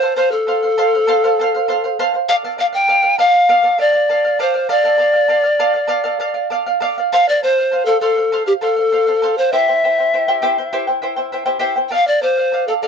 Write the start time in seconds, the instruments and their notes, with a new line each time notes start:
Already playing: pan flute C5
0.02 charango A4 C5 F5
0.16 charango A4 C5 F5, pan flute C5
0.31 pan flute A4, charango C5 F5
0.47 charango A4 C5 F5
0.63 charango C5 F5
0.78 charango A4 C5 F5
0.95 charango C5 F5
1.07 charango A4 C5 F5
1.24 charango A4 C5 F5
1.39 charango A4 C5 F5
1.55 charango C5 F5
1.68 charango A4 C5 F5
1.84 charango C5 F5
1.99 charango A4 C5 F5
2.14 charango C5 F5
2.29 charango A4 D5 F5, pan flute F5
2.45 charango A4 D5 F5
2.58 charango A4 D5 F5, pan flute F5
2.73 charango D5 F5, pan flute G5
2.88 charango A4 D5 F5
3.03 charango D5 F5
3.18 charango A4 D5 F5, pan flute F5
3.34 charango D5 F5
3.49 charango A4 D5 F5
3.63 charango A4 D5 F5
3.78 charango A4 D5 F5, pan flute D5
3.93 charango D5 F5
4.09 charango A4 D5 F5
4.25 charango D5 F5
4.39 charango A4 D5 F5, pan flute C5
4.54 charango D5 F5
4.69 charango A4 D5 F5, pan flute D5
4.84 charango A4 D5 F5
4.98 charango A4 D5 F5
5.13 charango D5 F5
5.28 charango A4 D5 F5
5.44 charango D5 F5
5.60 charango A4 D5 F5
5.74 charango D5 F5
5.88 charango A4 D5 F5
6.04 charango A4 D5 F5
6.20 charango A4 D5 F5
6.34 charango D5 F5
6.50 charango A4 D5 F5
6.66 charango D5 F5
6.80 charango A4 D5 F5
6.98 charango D5 F5
7.13 charango A4 C5 F5, pan flute F5
7.28 charango C5 F5, pan flute D5
7.43 charango A4 C5 F5, pan flute C5
7.58 charango C5 F5
7.71 charango A4 C5 F5
7.86 pan flute A4, charango A4 C5 F5
8.01 pan flute A4, charango A4 C5 F5
8.17 charango C5 F5
8.32 charango A4 C5 F5
8.46 pan flute G4, charango C5 F5
8.61 charango A4 C5 F5, pan flute A4
8.76 charango C5 F5
8.92 charango A4 C5 F5
9.07 charango A4 C5 F5
9.22 charango A4 C5 F5
9.38 pan flute C5, charango C5 F5
9.52 charango E4 G4 C5 E5 G5, pan flute E5
9.68 charango E4 C5 G5
9.84 charango E4 C5 E5 G5
9.99 charango E4 C5 G5
10.14 charango E4 C5 E5 G5
10.28 charango E4 G4 C5 E5 G5
10.42 charango E4 G4 C5 E5 G5
10.58 charango E4 C5 G5
10.73 charango E4 G4 C5 E5 G5
10.87 charango E4 C5 G5
11.02 charango E4 C5 E5 G5
11.16 charango E4 C5 G5
11.32 charango E4 C5 E5 G5
11.46 charango E4 G4 C5 E5 G5
11.59 charango E4 G4 C5 E5 G5
11.76 charango E4 C5 G5
11.89 charango A4 D5 F5, pan flute G5
11.93 pan flute F5
12.07 pan flute D5, charango D5 F5
12.22 charango A4 D5 F5, pan flute C5
12.37 charango D5 F5
12.52 charango A4 D5 F5
12.68 pan flute A4, charango A4 D5 F5
12.82 pan flute A4, charango A4 D5 F5